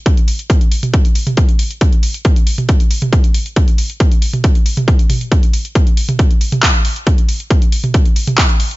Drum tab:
HH |xxoxxxoxxxoxxxox|xxoxxxoxxxoxxxox|xxoxxxoxxxoxxxox|xxoxxxoxxxoxxxox|
CP |----------------|----------------|----------------|------------x---|
T2 |-------o---o----|-------o---o----|-------o---o--o-|-------o---o----|
BD |o---o---o---o---|o---o---o---o---|o---o---o---o---|o---o---o---o---|

HH |xxoxxxoxxxoxxxox|
CP |------------x---|
T2 |-------o---o----|
BD |o---o---o---o---|